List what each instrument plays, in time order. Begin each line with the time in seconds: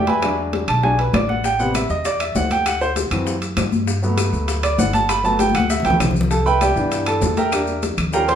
Already playing: upright bass E2
0.07 grand piano B4 E5 G#5 B5, high bongo, high conga, high timbale
0.22 grand piano F#3 G#3 D4, high bongo, high conga, high timbale, claves
0.38 high bongo, high conga
0.53 high bongo, high conga, high timbale, low timbale
0.68 upright bass B1, grand piano A5, high conga, high timbale, claves
0.83 grand piano F#3 G#3 D4 G#5, high bongo, high conga
0.98 grand piano B4, high bongo, high conga, high timbale
1.13 upright bass A1, grand piano D5, high bongo, low bongo, high conga, high timbale, low timbale, claves
1.29 grand piano F#5, high bongo, high conga
1.44 grand piano G5, high bongo, high conga, maracas
1.59 grand piano C3 G3 B3 F#5, high bongo, high conga, maracas
1.74 grand piano E5, high bongo, high conga, high timbale, low timbale, claves, maracas
1.89 upright bass E2, grand piano D#5, maracas
2.05 grand piano D5, high bongo, high conga, high timbale, maracas
2.20 grand piano E5, high bongo, high conga, high timbale, claves, maracas
2.35 upright bass D2, grand piano F#5, high bongo, low bongo, high conga, low timbale, maracas
2.50 grand piano G5, high bongo, high conga, high timbale, maracas
2.65 grand piano F#5, high bongo, high conga, high timbale, claves, maracas
2.81 grand piano C5, high bongo, high conga, maracas
2.96 high bongo, high conga, high timbale, low timbale, maracas
3.11 upright bass F#2, grand piano E3 F#3 C4, high conga, high timbale, claves, maracas
3.27 high bongo, high conga, maracas
3.41 high bongo, high conga, high timbale, maracas
3.57 upright bass G2, high bongo, low bongo, high conga, high timbale, low timbale, claves, maracas
3.72 high bongo, high conga, maracas
3.87 high bongo, high conga, maracas
4.02 grand piano F#3 A3 B3, high bongo, high conga, maracas
4.17 high bongo, high conga, high timbale, low timbale, claves, maracas
4.33 upright bass D2, maracas
4.48 high bongo, high conga, high timbale, maracas
4.63 grand piano D5, high bongo, high conga, high timbale, claves, maracas
4.78 upright bass G1, grand piano F#5, high bongo, low bongo, high conga, low timbale, maracas
4.93 grand piano A5, high bongo, high conga, high timbale, maracas
5.09 grand piano B5, high bongo, high conga, high timbale, claves, maracas
5.24 grand piano F#3 A3 B3 A5, high bongo, high conga, maracas
5.39 grand piano G5, high bongo, high conga, high timbale, low timbale, maracas
5.50 high conga
5.54 upright bass D2, grand piano F#5, high timbale, claves, maracas
5.60 high conga
5.70 grand piano E5, high bongo, maracas
5.80 low conga
5.85 upright bass D2, grand piano F#3 A3 B3 G5, high bongo, high timbale, maracas
5.90 low conga
6.00 upright bass C2, high bongo, low bongo, low conga, high timbale, low timbale, claves, maracas
6.11 low conga
6.15 high bongo, maracas
6.21 low conga
6.31 grand piano A4 A5, high bongo, high conga, maracas
6.46 grand piano B4 E5 G5 B5, high bongo, high conga, maracas
6.61 grand piano G4 D5 E5 G5, high bongo, high conga, high timbale, low timbale, claves, maracas
6.76 upright bass G2, grand piano E3 B3 D4, maracas
6.92 high bongo, high conga, high timbale, maracas
7.06 grand piano A4 A5, high bongo, high conga, high timbale, claves, maracas
7.22 upright bass E2, high bongo, low bongo, high conga, low timbale, maracas
7.37 grand piano A#4 E5 G5 A#5, high bongo, high conga, high timbale, maracas
7.52 grand piano G3 A#3 D4, high bongo, high conga, high timbale, claves, maracas
7.67 high bongo, high conga, maracas
7.83 high bongo, high conga, high timbale, low timbale, maracas
7.98 upright bass D#2, high conga, low conga, high timbale, claves, maracas
8.13 grand piano G3 C#4 F4 A#4 F5 G5 A#5, high bongo, high conga, maracas
8.28 grand piano C5 C6, high conga, high timbale, maracas